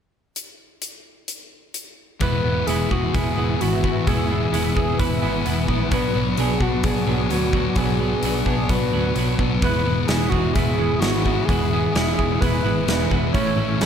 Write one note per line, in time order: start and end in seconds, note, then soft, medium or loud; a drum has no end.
0.36 closed hi-hat medium
0.82 closed hi-hat medium
1.28 closed hi-hat soft
1.74 closed hi-hat soft
2.20 2.39 E1 medium
2.20 2.66 E2 medium
2.20 2.45 B2 medium
2.20 2.66 E3 medium
2.20 2.47 G#3 medium
2.20 2.45 B3 medium
2.20 2.44 E4 medium
2.20 2.68 B4 loud
2.20 9.59 B4 medium
2.20 5.88 E5 medium
2.20 5.88 G#5 medium
2.20 5.88 E6 medium
2.20 kick medium
2.20 open hi-hat soft
2.44 2.62 E1 medium
2.44 2.67 B2 medium
2.44 2.69 E3 medium
2.44 2.68 G#3 medium
2.44 2.69 B3 medium
2.44 2.69 E4 medium
2.66 2.86 E1 medium
2.66 3.59 E2 medium
2.66 3.38 B2 medium
2.66 3.13 E3 medium
2.66 2.93 G#3 medium
2.66 2.92 B3 medium
2.66 2.90 E4 medium
2.66 2.93 G#4 medium
2.66 open hi-hat soft
2.91 3.09 E1 medium
2.91 3.13 G#3 soft
2.91 3.15 B3 medium
2.91 3.15 E4 medium
2.91 3.16 F#4 medium
2.91 4.07 G#4 medium
2.91 kick medium
3.13 3.32 E1 medium
3.13 3.39 E3 medium
3.13 3.38 G#3 medium
3.13 3.38 B3 medium
3.13 3.36 E4 medium
3.13 3.62 G#4 medium
3.13 kick loud
3.13 open hi-hat soft
3.37 3.56 E1 medium
3.37 3.61 B2 medium
3.37 3.59 E3 medium
3.37 3.60 G#3 medium
3.37 3.62 B3 medium
3.37 3.62 E4 medium
3.60 3.98 G#1 medium
3.60 4.06 E2 medium
3.60 3.85 B2 medium
3.60 4.06 E3 medium
3.60 3.86 G#3 medium
3.60 3.85 B3 medium
3.60 3.83 E4 medium
3.60 4.09 F#4 medium
3.60 open hi-hat soft
3.84 4.08 B2 medium
3.84 4.10 E3 medium
3.84 4.07 G#3 soft
3.84 4.09 B3 medium
3.84 4.09 E4 medium
3.84 kick medium
4.07 4.44 E1 medium
4.07 4.51 E2 medium
4.07 4.32 B2 medium
4.07 4.51 E3 medium
4.07 4.32 G#3 medium
4.07 4.31 B3 medium
4.07 4.29 E4 loud
4.07 4.76 G#4 loud
4.07 kick medium
4.07 open hi-hat soft
4.30 4.53 B2 medium
4.30 4.54 E3 medium
4.30 4.52 G#3 medium
4.30 4.54 B3 medium
4.30 4.54 E4 medium
4.52 4.71 E1 medium
4.52 5.44 E2 medium
4.52 5.24 B2 medium
4.52 4.97 E3 medium
4.52 4.77 G#3 medium
4.52 4.76 B3 medium
4.52 4.74 E4 loud
4.52 open hi-hat soft
4.75 4.95 E1 medium
4.75 4.98 G#3 medium
4.75 5.00 B3 medium
4.75 5.00 E4 medium
4.75 5.92 G#4 medium
4.75 5.01 G#4 medium
4.75 kick medium
4.98 5.18 E1 medium
4.98 5.23 E3 medium
4.98 5.22 G#3 medium
4.98 5.22 B3 medium
4.98 5.21 E4 medium
4.98 5.69 B4 medium
4.98 kick loud
4.98 open hi-hat soft
5.22 5.41 G#1 medium
5.22 5.45 B2 soft
5.22 5.43 E3 medium
5.22 5.45 G#3 medium
5.22 5.46 B3 medium
5.22 5.46 E4 medium
5.45 5.65 E1 medium
5.45 5.90 E2 medium
5.45 5.70 B2 medium
5.45 5.90 E3 medium
5.45 5.70 G#3 medium
5.45 5.69 B3 medium
5.45 5.66 E4 medium
5.45 open hi-hat soft
5.68 5.87 A#1 medium
5.68 5.90 B2 medium
5.68 5.90 E3 medium
5.68 5.91 G#3 medium
5.68 5.92 B3 medium
5.68 5.90 E4 medium
5.68 kick medium
5.90 6.10 B1 medium
5.90 6.36 B2 medium
5.90 6.17 F#3 medium
5.90 6.16 B3 medium
5.90 6.14 D4 loud
5.90 6.35 B4 loud
5.90 9.60 F#5 medium
5.90 9.59 C#6 medium
5.90 9.59 D6 medium
5.90 kick loud
5.90 open hi-hat soft
6.14 6.34 B1 medium
6.14 6.38 F#3 medium
6.14 6.39 B3 medium
6.14 6.40 D4 medium
6.37 6.57 B1 medium
6.37 6.83 B2 medium
6.37 6.63 F#3 medium
6.37 6.62 B3 medium
6.37 6.60 D4 loud
6.37 6.63 G#4 medium
6.37 open hi-hat soft
6.60 6.79 B1 medium
6.60 6.84 F#3 medium
6.60 6.86 B3 medium
6.60 6.86 D4 medium
6.60 6.85 F#4 medium
6.60 kick medium
6.84 7.03 B1 medium
6.84 7.09 B2 medium
6.84 7.08 F#3 medium
6.84 7.08 B3 medium
6.84 7.06 D4 medium
6.84 7.32 G#4 medium
6.84 kick loud
6.84 open hi-hat soft
7.07 7.26 B1 medium
7.07 7.29 B2 medium
7.07 7.30 F#3 medium
7.07 7.32 B3 medium
7.07 7.32 D4 medium
7.30 7.68 D2 medium
7.30 7.75 B2 medium
7.30 7.55 F#3 medium
7.30 7.54 B3 medium
7.30 7.52 D4 medium
7.30 7.78 F#4 medium
7.30 open hi-hat soft
7.53 7.76 F#3 medium
7.53 7.78 B3 medium
7.53 7.78 D4 medium
7.53 kick medium
7.76 8.14 B1 medium
7.76 8.22 B2 medium
7.76 8.02 F#3 medium
7.76 8.01 B3 medium
7.76 7.99 D4 medium
7.76 8.46 G#4 medium
7.76 kick loud
7.76 open hi-hat soft
8.00 8.23 F#3 soft
8.00 8.24 B3 medium
8.00 8.24 D4 medium
8.23 8.42 B1 medium
8.23 8.68 B2 medium
8.23 8.48 F#3 loud
8.23 8.47 B3 medium
8.23 8.45 D4 loud
8.23 open hi-hat soft
8.46 8.65 B1 medium
8.46 8.69 F#3 medium
8.46 8.71 B3 medium
8.46 8.71 D4 medium
8.46 8.71 G#4 medium
8.46 kick medium
8.69 8.88 B1 medium
8.69 8.95 B2 medium
8.69 8.94 F#3 medium
8.69 8.94 B3 medium
8.69 8.92 D4 medium
8.69 9.39 B4 medium
8.69 kick loud
8.69 open hi-hat soft
8.93 9.12 D2 medium
8.93 9.15 B2 medium
8.93 9.15 F#3 medium
8.93 9.17 B3 medium
8.93 9.18 D4 medium
9.16 9.35 B1 medium
9.16 9.61 B2 medium
9.16 9.40 F#3 medium
9.16 9.40 B3 medium
9.16 9.37 D4 medium
9.16 open hi-hat soft
9.38 9.57 B1 medium
9.38 9.62 F#3 medium
9.38 9.64 B3 medium
9.38 9.61 D4 medium
9.38 kick medium
9.61 9.81 E1 medium
9.61 10.08 E2 medium
9.61 9.87 B2 medium
9.61 10.08 E3 medium
9.61 9.88 G#3 medium
9.61 9.87 B3 medium
9.61 9.85 E4 medium
9.61 13.30 G#4 medium
9.61 10.09 B4 loud
9.61 13.86 E5 medium
9.61 13.30 B5 medium
9.61 13.86 E6 medium
9.61 kick loud
9.61 open hi-hat soft
9.86 10.04 E1 medium
9.86 10.09 B2 medium
9.86 10.11 E3 medium
9.86 10.10 G#3 soft
9.86 10.11 B3 medium
9.86 10.12 E4 medium
10.07 10.27 E1 medium
10.07 10.99 E2 medium
10.07 10.79 B2 medium
10.07 10.55 E3 medium
10.07 10.35 G#3 medium
10.07 10.31 G#4 medium
10.07 snare loud
10.07 open hi-hat soft
10.11 10.34 B3 medium
10.11 10.32 E4 medium
10.29 10.51 E1 medium
10.29 10.58 E4 medium
10.29 10.55 F#4 medium
10.29 11.48 G#4 medium
10.29 kick medium
10.34 10.55 G#3 medium
10.34 10.57 B3 medium
10.53 10.74 E1 medium
10.53 10.81 E3 medium
10.53 10.80 G#3 medium
10.53 11.01 G#4 medium
10.53 kick loud
10.53 open hi-hat soft
10.58 10.79 B3 medium
10.58 10.78 E4 medium
10.78 10.97 E1 medium
10.78 11.01 B2 medium
10.78 11.02 E3 medium
10.78 11.02 G#3 medium
10.78 11.03 B3 medium
10.78 11.04 E4 medium
11.00 11.38 G#1 medium
11.00 11.46 E2 medium
11.00 11.26 B2 medium
11.00 11.48 E3 medium
11.00 11.27 G#3 medium
11.00 11.46 F#4 medium
11.00 snare loud
11.00 open hi-hat soft
11.04 11.26 B3 medium
11.04 11.25 E4 medium
11.24 11.47 B2 medium
11.24 11.50 E3 medium
11.24 11.48 G#3 medium
11.24 11.49 B3 medium
11.24 11.51 E4 medium
11.24 kick medium
11.45 11.85 E1 medium
11.45 11.93 E2 medium
11.45 11.72 B2 medium
11.45 11.94 E3 medium
11.45 12.15 G#4 loud
11.45 kick medium
11.49 11.73 G#3 medium
11.49 11.72 B3 medium
11.49 11.70 E4 loud
11.49 open hi-hat soft
11.71 11.94 B2 medium
11.71 11.96 E3 medium
11.71 11.95 G#3 medium
11.71 11.96 B3 medium
11.71 11.97 E4 medium
11.94 12.13 E1 medium
11.94 12.85 E2 medium
11.94 12.66 B2 medium
11.94 12.41 E3 medium
11.94 12.20 G#3 medium
11.94 12.18 B3 loud
11.94 12.18 E4 loud
11.94 snare loud
11.94 open hi-hat soft
12.16 12.37 E1 medium
12.16 12.41 B3 medium
12.16 12.43 E4 medium
12.16 12.42 G#4 medium
12.16 13.34 G#4 medium
12.16 kick medium
12.21 12.41 G#3 medium
12.41 12.60 E1 medium
12.41 12.67 E3 medium
12.41 12.65 G#3 medium
12.41 12.64 B3 medium
12.41 12.64 E4 medium
12.41 13.11 B4 medium
12.41 kick loud
12.41 open hi-hat soft
12.64 12.83 G#1 medium
12.64 12.87 B2 medium
12.64 12.87 E3 medium
12.64 12.88 G#3 medium
12.64 12.88 B3 medium
12.64 12.90 E4 medium
12.87 13.06 E1 medium
12.87 13.32 E2 medium
12.87 13.11 B2 medium
12.87 13.35 E3 medium
12.87 13.13 G#3 medium
12.87 13.12 B3 medium
12.87 13.11 E4 medium
12.87 snare medium
12.87 open hi-hat soft
13.10 13.30 E1 medium
13.10 13.33 B2 medium
13.10 13.34 E3 medium
13.10 13.34 B3 medium
13.10 13.37 E4 medium
13.10 kick medium
13.14 13.34 G#3 medium
13.32 13.53 A1 medium
13.32 13.80 A2 medium
13.32 13.81 E3 medium
13.32 13.60 A3 medium
13.32 13.58 C#4 loud
13.32 13.86 A4 medium
13.32 13.83 C#5 loud
13.32 13.86 C#6 medium
13.32 kick loud
13.32 open hi-hat soft
13.37 13.57 E4 medium
13.56 13.75 A1 medium
13.56 13.80 E3 medium
13.56 13.81 A3 soft
13.56 13.82 C#4 medium
13.56 13.83 E4 medium
13.79 13.86 A1 medium
13.79 13.86 A2 medium
13.79 13.86 E3 medium
13.79 13.86 A3 medium
13.79 13.86 C#4 medium
13.79 13.86 E4 medium
13.79 13.86 A4 medium
13.79 snare loud
13.79 open hi-hat soft